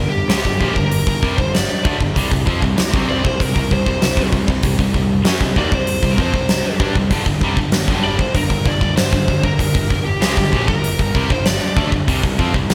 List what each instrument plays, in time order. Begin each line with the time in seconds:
Already playing: picked electric bass G1
0.00 distorted electric guitar G2 D3
0.10 lead electric guitar G4
0.28 picked electric bass C#2, distorted electric guitar C#3 G#3, snare, open hi-hat
0.45 picked electric bass G1, distorted electric guitar G2 D3, kick
0.60 picked electric bass A#1, distorted electric guitar A#2 F3, kick
0.74 picked electric bass G1, lead electric guitar A#4, kick
0.78 distorted electric guitar G2 D3
0.91 open hi-hat
1.07 picked electric bass G1, distorted electric guitar G2 D3, kick
1.23 picked electric bass C2, distorted electric guitar C3 G3, kick
1.37 picked electric bass G1, distorted electric guitar G2 D3, lead electric guitar C5, kick
1.54 lead electric guitar D5, snare, open hi-hat
1.85 picked electric bass D2, distorted electric guitar D3 A3, kick
2.00 picked electric bass G1, distorted electric guitar G2 D3, kick
2.16 picked electric bass C2, distorted electric guitar C3 G3, kick, open hi-hat
2.31 picked electric bass C2, distorted electric guitar C3 G3, kick
2.47 picked electric bass F2, distorted electric guitar F3 C4, kick
2.62 picked electric bass C2, distorted electric guitar C3 G3, kick
2.78 picked electric bass C2, distorted electric guitar C3 G3, snare, open hi-hat
2.91 picked electric bass C2, distorted electric guitar C3 G3 C4, kick
2.95 distorted electric guitar C3 G3 C4
3.10 lead electric guitar D5
3.24 picked electric bass C2, distorted electric guitar C3 G3, lead electric guitar C5, kick
3.40 picked electric bass C2, distorted electric guitar C3 G3, lead electric guitar A#4, kick, open hi-hat
3.55 picked electric bass C2, distorted electric guitar C3 G3, kick
3.71 picked electric bass C2, distorted electric guitar C3 G3, lead electric guitar C5, kick
3.86 picked electric bass C2, distorted electric guitar C3 G3, kick
4.02 picked electric bass C2, distorted electric guitar C3 G3, snare, open hi-hat
4.17 picked electric bass C2, distorted electric guitar C3 G3, kick
4.32 picked electric bass C2, distorted electric guitar C3 G3, kick
4.48 picked electric bass C2, distorted electric guitar C3 G3, kick
4.63 picked electric bass C2, distorted electric guitar C3 G3, kick, open hi-hat
4.79 picked electric bass C2, distorted electric guitar C3 G3, kick
4.94 picked electric bass C2, distorted electric guitar C3 G3, kick
5.25 picked electric bass F#2, distorted electric guitar F#3 C#4, snare, open hi-hat
5.41 picked electric bass C2, distorted electric guitar C3 G3, kick
5.56 picked electric bass D#2, distorted electric guitar D#3 A#3, lead electric guitar D5, kick
5.71 picked electric bass C2, distorted electric guitar C3 G3, lead electric guitar C5, kick
5.87 open hi-hat
6.02 picked electric bass C2, distorted electric guitar C3 G3, kick
6.12 lead electric guitar A#4
6.18 picked electric bass F2, distorted electric guitar F3 C4, lead electric guitar C5, kick
6.33 picked electric bass C2, distorted electric guitar C3 G3, kick
6.49 snare, open hi-hat
6.80 picked electric bass G2, distorted electric guitar G3 D4, kick
6.95 picked electric bass C2, distorted electric guitar C3 G3, kick
7.11 picked electric bass G1, distorted electric guitar G2 D3, kick, open hi-hat
7.26 picked electric bass G1, distorted electric guitar G2 D3, kick
7.41 picked electric bass C2, distorted electric guitar C3 G3, kick
7.56 picked electric bass G1, distorted electric guitar G2 D3, kick
7.71 picked electric bass G1, distorted electric guitar G2 D3, snare, open hi-hat
7.87 picked electric bass G1, distorted electric guitar G2 D3 G3, kick
8.05 lead electric guitar D5
8.18 picked electric bass G1, distorted electric guitar G2 D3, lead electric guitar C5, kick
8.34 picked electric bass G1, distorted electric guitar G2 D3, lead electric guitar A#4, kick, open hi-hat
8.49 picked electric bass G1, distorted electric guitar G2 D3, kick
8.65 picked electric bass G1, distorted electric guitar G2 D3, lead electric guitar D5, kick
8.81 picked electric bass G1, distorted electric guitar G2 D3, kick
8.96 picked electric bass G1, distorted electric guitar G2 D3, lead electric guitar C5, snare, open hi-hat
9.11 picked electric bass G1, distorted electric guitar G2 D3, kick
9.27 picked electric bass G1, distorted electric guitar G2 D3, kick
9.43 picked electric bass G1, distorted electric guitar G2 D3, lead electric guitar A#4, kick
9.59 picked electric bass G1, distorted electric guitar G2 D3, kick, open hi-hat
9.74 picked electric bass G1, distorted electric guitar G2 D3, kick
9.89 picked electric bass G1, distorted electric guitar G2 D3, kick
10.05 lead electric guitar G4
10.21 picked electric bass C#2, distorted electric guitar C#3 G#3, snare, open hi-hat
10.36 picked electric bass G1, distorted electric guitar G2 D3, kick
10.52 picked electric bass A#1, distorted electric guitar A#2 F3, kick
10.68 picked electric bass G1, distorted electric guitar G2 D3, lead electric guitar A#4, kick
10.84 open hi-hat
10.99 picked electric bass G1, distorted electric guitar G2 D3, kick
11.15 picked electric bass C2, distorted electric guitar C3 G3, kick
11.30 picked electric bass G1, distorted electric guitar G2 D3, lead electric guitar C5, kick
11.46 lead electric guitar D5, snare, open hi-hat
11.77 picked electric bass D2, distorted electric guitar D3 A3, kick
11.92 picked electric bass G1, distorted electric guitar G2 D3, kick
12.08 picked electric bass C2, distorted electric guitar C3 G3, kick, open hi-hat
12.23 picked electric bass C2, distorted electric guitar C3 G3, kick
12.39 picked electric bass F2, distorted electric guitar F3 C4, kick
12.54 picked electric bass C2, distorted electric guitar C3 G3, kick
12.69 picked electric bass C2, distorted electric guitar C3 G3, snare, open hi-hat